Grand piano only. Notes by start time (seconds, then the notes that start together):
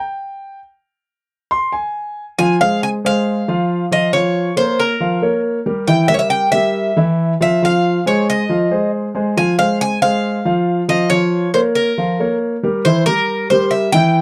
Already playing: G5
1.51 C6
1.72 G#5
2.39 F3 F4 F5
2.61 G#3 G#4 C5
3.04 G#3 G#4 C5
3.48 F3 F4 F5
3.91 F3 F4 F5
4.14 F3 F4 F5
4.56 A#3 A#4 C#5
5.00 F3 F4 F5
5.22 A#3 A#4 C#5
5.66 G3 G4 A#4
5.88 E3 E4 E5
6.10 G3 G4 A#4
6.53 G3 G4 A#4
6.97 E3 E4 E5
7.40 F3 F4 F5
7.62 F3 F4 F5
8.06 G#3 G#4 C5
8.49 F3 F4 F5
8.71 G#3 G#4 C5
9.15 G#3 G#4 C5
9.37 F3 F4 F5
9.59 G#3 G#4 C5
10.02 G#3 G#4 C5
10.45 F3 F4 F5
10.88 F3 F4 F5
11.11 F3 F4 F5
11.54 A#3 A#4 C#5
11.98 F3 F4 F5
12.20 A#3 A#4 C#5
12.63 G3 G4 A#4
12.86 E3 E4 E5
13.07 G3 G4 A#4
13.51 G3 G4 A#4
13.94 E3 E4 E5